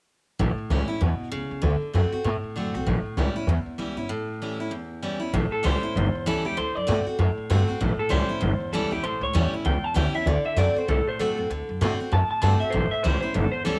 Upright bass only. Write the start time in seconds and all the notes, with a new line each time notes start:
0.39 A1
0.58 muted upright bass stroke
0.70 C#2
0.89 muted upright bass stroke
1.01 E2
1.20 muted upright bass stroke
1.32 C#2
1.51 C#2
1.63 D2
1.82 muted upright bass stroke
1.94 F#2
2.12 muted upright bass stroke
2.25 A2
2.43 muted upright bass stroke
2.57 F#2
2.74 C2
2.87 A1
3.06 muted upright bass stroke
3.17 C#2
3.36 muted upright bass stroke
3.47 E2
3.66 muted upright bass stroke
3.78 C#2
3.96 G1
5.33 A1
5.52 muted upright bass stroke
5.65 C#2
5.83 muted upright bass stroke
5.96 G1
6.15 muted upright bass stroke
6.27 C#2
6.45 C#2
6.58 D2
6.77 F#2
6.89 A2
7.06 muted upright bass stroke
7.19 F#2
7.38 muted upright bass stroke
7.50 G2
7.70 muted upright bass stroke
7.81 A1
8.00 muted upright bass stroke
8.11 C#2
8.30 muted upright bass stroke
8.42 G1
8.60 muted upright bass stroke
8.72 C#2
8.91 C#2
9.04 A1
9.21 C#2
9.35 E2
9.53 muted upright bass stroke
9.65 C#2
9.84 muted upright bass stroke
9.96 D2
10.26 D2
10.44 muted upright bass stroke
10.56 F#2
10.76 muted upright bass stroke
10.88 C2
11.07 muted upright bass stroke
11.19 F#2
11.37 F#2
11.50 D2
11.69 F#2
11.81 A2
11.99 muted upright bass stroke
12.12 F#2
12.31 muted upright bass stroke
12.43 G2
12.63 muted upright bass stroke
12.74 A1
12.93 muted upright bass stroke
13.05 C#2
13.24 muted upright bass stroke
13.35 G1
13.53 muted upright bass stroke
13.65 C#2